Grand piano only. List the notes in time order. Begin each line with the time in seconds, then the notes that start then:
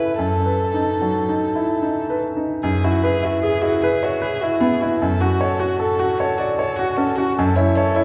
Already playing: F#2 C#3 E4 F#4 A4
0.19 F#2
0.46 B4
0.74 D#4
1.02 F#3
1.29 D#4
1.55 E4
1.82 D#4
2.10 B4
2.37 D#4
2.63 F#2
2.84 E4
3.03 B4
3.23 E4
3.43 G#4
3.63 E4
3.84 B4
4.03 C#5
4.22 B4
4.43 E4
4.61 B3
4.82 E4
5.02 F#2
5.22 F#4
5.41 C#5
5.60 F#4
5.80 A4
6.00 F#4
6.20 C#5
6.39 D5
6.59 C#5
6.79 F#4
6.97 C#4
7.18 F#4
7.39 F#2
7.57 E4
7.77 C#5
7.96 E4